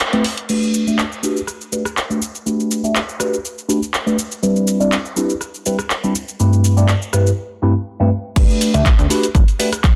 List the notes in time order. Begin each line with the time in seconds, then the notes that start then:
0.00 clap, closed hi-hat
0.13 A3 C4 E4 G4 B4, closed hi-hat
0.24 open hi-hat
0.38 closed hi-hat
0.49 A3 D4 F#4 G4 B4, crash, cabasa
0.63 cabasa
0.74 cabasa
0.87 A3 D4 F#4 G4 E5, cabasa
0.99 clap, cabasa
1.12 cabasa
1.23 A3 D4 F#4 G4 B4, cabasa
1.37 cabasa
1.47 cross-stick, cabasa
1.61 cabasa
1.72 A3 D4 F#4 G4 B4, cabasa
1.85 cross-stick, cabasa
1.97 clap, cabasa
2.10 A3 D4 F#4 G4 B4, cabasa
2.22 cabasa
2.35 cabasa
2.46 A3 D4 F#4 G4 B4, cabasa
2.60 cabasa
2.71 cabasa
2.84 A3 D4 F#4 G4 E5, cabasa
2.96 clap, cabasa
3.09 cabasa
3.20 A3 D4 F#4 G4 B4, cross-stick, cabasa
3.34 cabasa
3.45 cabasa
3.58 cabasa
3.68 A3 D4 F#4 G4 B4, cabasa
3.83 cabasa
3.94 clap, cabasa
4.06 A3 D4 F#4 G4 B4, cabasa
4.19 cabasa
4.32 cabasa
4.43 G3 C4 D4 E4 G4 B4, cabasa
4.56 cabasa
4.67 cabasa
4.80 G3 C4 D4 E4 G4 D5, cabasa
4.92 clap, cabasa
5.05 cabasa
5.16 G3 C4 D4 E4 G4 B4, cabasa
5.30 cabasa
5.41 cross-stick, cabasa
5.54 cabasa
5.66 G3 C4 D4 E4 G4 B4, cabasa
5.79 cross-stick, cabasa
5.90 clap, cabasa
6.04 G3 C4 D4 E4 G4 B4, cabasa
6.15 cabasa
6.28 cabasa
6.40 G2 A3 C4 E4 G4 B4, cabasa
6.53 cabasa
6.64 cabasa
6.77 G2 A3 C4 E4 G4 D5, cabasa
6.88 clap, cabasa
7.02 cabasa
7.13 G2 A3 C4 E4 G4 B4, cross-stick, cabasa
7.27 cabasa
7.62 G2 A3 C4 E4 G4 B4
8.00 G2 A3 C4 E4 G4 B4
8.36 G1 A3 D4 F#4 G4 B4, kick, closed hi-hat, crash, cabasa
8.50 cabasa
8.61 open hi-hat, cabasa
8.74 D2 A3 D4 F#4 G4 E5, closed hi-hat, cabasa
8.85 kick, clap, closed hi-hat, cabasa
8.99 D2, closed hi-hat, cabasa
9.10 A3 D4 F#4 G4 B4, open hi-hat, cabasa
9.23 closed hi-hat, cabasa
9.35 G1, kick, cross-stick, closed hi-hat, cabasa
9.48 closed hi-hat, cabasa
9.59 A3 D4 F#4 G4 B4, open hi-hat, cabasa
9.72 cross-stick, closed hi-hat, cabasa
9.84 kick, clap, closed hi-hat, cabasa